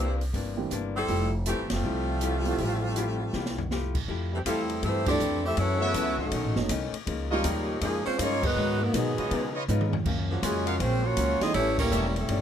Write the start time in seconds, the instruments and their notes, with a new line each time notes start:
Already playing: upright bass C2, hollow-body jazz guitar C3 E3 A#3 D4, saxophone section A#3 E4 G4 C5
0.21 open hi-hat
0.33 upright bass G1, hollow-body jazz guitar C3 E3 A#3 D4, kick, open hi-hat
0.57 upright piano E3 A#3 C4 D4 G4
0.71 upright bass G1, hollow-body jazz guitar C3 E3 A#3 D4, closed hi-hat
0.96 saxophone section G3 C4 E4 A4
1.07 upright bass F1, hollow-body jazz guitar F3 A3 E4 G4, upright piano F3 A3 C4 E4 G4, kick, open hi-hat
1.46 saxophone section E3 A3 C4 G4, hollow-body jazz guitar F3 A3 E4 G4, closed hi-hat
1.59 upright bass G1
1.69 upright bass F#1, trombone section A2 C3 F3, saxophone section G3 A3 F4, snare, ride
1.73 saxophone section C4
1.83 upright bass C2, hollow-body jazz guitar F3 A3 E4 G4
2.21 hollow-body jazz guitar F3 A3 E4 G4, closed hi-hat
2.45 upright piano F3 A3 C4 E4 G4, open hi-hat
2.58 upright bass A1, hollow-body jazz guitar F3 A3 E4 G4, kick, open hi-hat
2.96 hollow-body jazz guitar F3 A3 E4 G4, closed hi-hat
3.33 upright bass C2, hollow-body jazz guitar F3 A3 E4 G4, snare
3.46 snare
3.58 floor tom
3.71 hollow-body jazz guitar F3 A3 E4 G4, snare
3.95 kick, crash
4.08 upright bass F2, hollow-body jazz guitar F3 A3 E4 G4, kick
4.32 trombone section C3 E3 G3, saxophone section E3 A3 C4 G4
4.45 upright bass E2, trombone section C3 E3 A3, hollow-body jazz guitar F3 A3 E4 G4, saxophone section G3 C4 E4 A4, trumpet section G4 A4 E5 F5, kick, hi-hat pedal, ride
4.70 ride
4.82 upright bass G2, trombone section E3 A3 C4, hollow-body jazz guitar F3 A3 E4 G4, saxophone section A3 E4 G4 C5, kick, ride
5.06 trombone section E3 A3 D4, upright piano F3 A3 C4 E4 G4, saxophone section C4 G4 A4 D5, kick, crash
5.20 upright bass F2, hollow-body jazz guitar F3 A3 E4 G4, hi-hat pedal
5.44 trombone section A3 C4 E4, saxophone section C4 G4 A4 E5
5.57 upright bass F#2, hollow-body jazz guitar F#2 E3 A3 C#4, trombone section E3 A3 C#4, saxophone section A3 E4 F#4 C#5, kick, ride
5.81 trombone section C#3 E3 B3, saxophone section A3 E4 F#4 B4, trumpet section F#4 A4 C#5 E5
5.94 upright bass C#2, hollow-body jazz guitar F#2 E3 A3 C#4, kick, hi-hat pedal, ride
6.18 trombone section D#3 F#3 A3, saxophone section F#3 C#4 D#4 A4, kick
6.32 upright bass B1, hollow-body jazz guitar B2 D#3 A3 C#4, kick, ride
6.43 upright bass A1
6.56 upright bass F#1, upright piano F#3 A3 B3 C#4 D#4, snare
6.69 upright bass C2, hollow-body jazz guitar B2 D#3 A3 C#4, kick, hi-hat pedal, ride
6.92 muted upright bass stroke, ride
7.06 upright bass C#2, hollow-body jazz guitar C#3 F3 A#3 D#4, kick, ride
7.30 trombone section G#2 A#2 G3, upright piano F3 G#3 A#3 C#4 D#4, saxophone section F3 A#3 D#4 G4, trumpet section F4 A#4 C#5 D#5
7.44 upright bass D#2, hollow-body jazz guitar C#3 F3 A#3 D#4, kick, hi-hat pedal, ride
7.81 upright bass F2, trombone section A#2 F3 G#3, hollow-body jazz guitar C#3 F3 A#3 D#4, saxophone section F3 A#3 D#4 G#4, kick, ride
8.05 saxophone section G#3 C#4 F4 C5, trombone section C4, muted upright bass stroke
8.18 upright bass G2, hollow-body jazz guitar C#3 F3 A#3 D#4, trombone section G#3 A#3 C#4, saxophone section A#3 F4 G#4 C#5, kick, hi-hat pedal, ride
8.43 trombone section D#3 F#3 B3, saxophone section G#3 D#4 F#4 B4, kick, crash
8.56 upright bass G#2, hollow-body jazz guitar G#2 F#3 B3 D#4
8.80 saxophone section F#3 B3 D#4 A#4, trombone section A#3
8.93 hollow-body jazz guitar G#2 F#3 B3 D#4, upright bass B2, trombone section B2 D#3 G#3, upright piano F#3 G#3 B3 D#4 A#4, saxophone section F#3 B3 D#4 G#4, kick, hi-hat pedal, ride
9.18 trumpet section F4 B4 C#5 D#5, muted upright bass stroke, ride
9.31 hollow-body jazz guitar C#3 F3 B3 D#4, upright bass C#3, kick, ride
9.55 trumpet section F4 B4 C#5 D#5
9.68 upright bass G#2, hollow-body jazz guitar C#3 F3 B3 D#4, upright piano F3 G#3 B3 C#4 D#4, hi-hat pedal
9.81 high tom
9.93 floor tom
10.06 upright bass F#2, hollow-body jazz guitar F#2 F3 A#3 C#4, kick, crash
10.30 trombone section A#2 C#3 F#3, saxophone section C#3 F3 A#3 F#4
10.43 upright bass F2, hollow-body jazz guitar F#2 F3 A#3 C#4, trombone section C#3 G#3, saxophone section C#4 F4 F#4 G#4, kick, hi-hat pedal, ride
10.67 trumpet section F#4 A#4 C#5 F5, ride
10.80 upright bass A#1, hollow-body jazz guitar F#2 F3 A#3 C#4, saxophone section G#3 C#4 F4 C5, trombone section C4, kick, ride
11.04 trombone section F#3 A#3 C#4, saxophone section A#3 F4 F#4 C#5
11.17 upright bass C#2, hollow-body jazz guitar F#2 F3 A#3 C#4, kick, hi-hat pedal, ride
11.41 upright piano E3 G3 A3 C#4 E4, saxophone section C4 F4 G#4 D#5, trombone section D#4, muted upright bass stroke, snare, ride
11.54 upright bass A1, hollow-body jazz guitar A2 G3 C#4 E4, trombone section E3 G3 C#4, saxophone section A3 E4 G4 C#5, kick, ride
11.78 trombone section E3 G3 A#3, saxophone section G3 C#4 E4 A#4, kick, crash
11.90 upright bass E1, hollow-body jazz guitar A2 G3 C#4 E4, trumpet section G4 A4 C#5 E5, hi-hat pedal
12.16 trombone section C#3 E3 A3, saxophone section G3 C#4 E4 A4, ride
12.28 upright bass G1, hollow-body jazz guitar A2 G3 C#4 E4, kick, ride